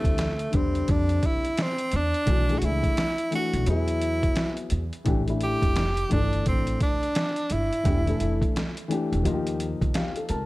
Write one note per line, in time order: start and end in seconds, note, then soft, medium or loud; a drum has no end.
0.00 0.20 D3 medium
0.00 0.21 G3 medium
0.00 0.57 A3 medium
0.00 0.22 C4 medium
0.00 0.22 E4 medium
0.04 0.45 D2 medium
0.04 kick medium
0.04 closed hi-hat medium
0.18 snare loud
0.18 closed hi-hat medium
0.39 closed hi-hat medium
0.51 0.83 E2 medium
0.51 1.44 D3 medium
0.51 1.45 G3 medium
0.51 1.45 C4 medium
0.51 1.46 D4 medium
0.51 kick medium
0.51 closed hi-hat medium
0.56 0.92 C4 medium
0.75 closed hi-hat medium
0.88 1.18 F2 loud
0.88 1.28 D4 loud
0.88 kick loud
0.88 closed hi-hat medium
1.09 closed hi-hat medium
1.23 1.63 E4 loud
1.23 kick medium
1.23 closed hi-hat medium
1.45 closed hi-hat medium
1.57 snare loud
1.57 closed hi-hat medium
1.62 1.98 C4 loud
1.78 closed hi-hat soft
1.92 2.11 E2 medium
1.92 closed hi-hat medium
1.96 2.60 D4 loud
2.14 closed hi-hat soft
2.26 2.56 B1 loud
2.26 2.40 E3 medium
2.26 2.41 A3 medium
2.26 2.42 D4 medium
2.26 2.42 F#4 medium
2.26 kick loud
2.26 closed hi-hat medium
2.48 3.00 E3 medium
2.48 3.00 A3 medium
2.48 3.01 D4 medium
2.48 3.01 G#4 medium
2.48 closed hi-hat soft
2.59 2.81 C#2 medium
2.59 2.66 F#4 medium
2.59 closed hi-hat medium
2.65 3.33 E4 loud
2.83 kick medium
2.83 closed hi-hat medium
2.97 snare loud
2.97 closed hi-hat medium
3.18 closed hi-hat medium
3.31 3.66 E3 medium
3.31 3.67 A3 medium
3.31 3.68 D4 medium
3.31 3.68 F#4 medium
3.31 closed hi-hat medium
3.35 3.66 F#4 loud
3.53 3.65 B1 medium
3.53 closed hi-hat medium
3.66 4.25 E2 medium
3.66 4.80 F#3 medium
3.66 4.81 B3 medium
3.66 4.81 E4 medium
3.66 4.82 G#4 medium
3.66 closed hi-hat medium
3.70 4.69 E4 loud
3.88 closed hi-hat medium
4.02 closed hi-hat medium
4.23 kick medium
4.23 closed hi-hat soft
4.36 snare loud
4.36 closed hi-hat medium
4.57 closed hi-hat medium
4.70 4.90 E2 medium
4.70 closed hi-hat medium
4.93 closed hi-hat soft
5.05 5.54 A1 medium
5.05 5.19 E3 medium
5.05 5.20 A3 medium
5.05 5.21 D4 medium
5.05 5.21 G4 medium
5.05 kick loud
5.05 closed hi-hat medium
5.26 5.78 E3 medium
5.26 5.79 A3 medium
5.26 5.79 D4 medium
5.26 5.80 E4 medium
5.26 closed hi-hat medium
5.41 6.08 G4 loud
5.41 closed hi-hat medium
5.62 6.03 F1 medium
5.62 kick medium
5.62 closed hi-hat medium
5.76 snare loud
5.76 closed hi-hat medium
5.97 closed hi-hat medium
6.09 6.41 G1 loud
6.09 7.02 E3 medium
6.09 7.03 A3 medium
6.09 7.03 D4 medium
6.09 6.44 D4 medium
6.09 7.04 A4 medium
6.09 kick medium
6.09 closed hi-hat medium
6.33 closed hi-hat soft
6.46 6.76 A1 medium
6.46 6.80 C4 medium
6.46 kick loud
6.46 closed hi-hat medium
6.67 closed hi-hat medium
6.80 7.54 D4 loud
6.80 kick medium
6.80 closed hi-hat medium
7.03 closed hi-hat soft
7.15 snare loud
7.15 closed hi-hat medium
7.36 closed hi-hat medium
7.50 7.69 G1 medium
7.50 8.56 E4 medium
7.50 closed hi-hat medium
7.73 closed hi-hat soft
7.83 8.15 E1 loud
7.83 7.98 E3 medium
7.83 7.99 A3 medium
7.83 7.99 D4 medium
7.83 8.00 G4 medium
7.83 kick loud
7.83 closed hi-hat medium
8.05 8.57 E3 medium
8.05 8.58 A3 medium
8.05 8.59 D4 medium
8.05 closed hi-hat soft
8.09 8.59 A4 medium
8.20 8.39 F1 medium
8.20 closed hi-hat medium
8.42 kick medium
8.42 closed hi-hat medium
8.56 snare loud
8.56 closed hi-hat medium
8.77 closed hi-hat medium
8.88 9.24 E3 medium
8.88 9.25 A3 medium
8.88 9.25 D4 medium
8.88 closed hi-hat medium
8.92 9.26 G4 medium
9.12 9.23 E1 medium
9.12 closed hi-hat soft
9.23 9.73 D#2 medium
9.23 10.38 F3 medium
9.23 10.38 A#3 medium
9.23 10.39 D#4 medium
9.23 9.34 F4 medium
9.23 closed hi-hat medium
9.34 9.64 G4 medium
9.47 closed hi-hat medium
9.60 closed hi-hat medium
9.81 9.93 D#2 medium
9.81 kick medium
9.81 closed hi-hat soft
9.94 10.16 G4 medium
9.94 10.27 F5 medium
9.94 snare loud
9.94 closed hi-hat medium
10.16 10.29 A4 medium
10.16 closed hi-hat medium
10.29 10.46 C#2 medium
10.29 10.46 A#4 medium
10.29 10.46 A5 medium
10.29 closed hi-hat medium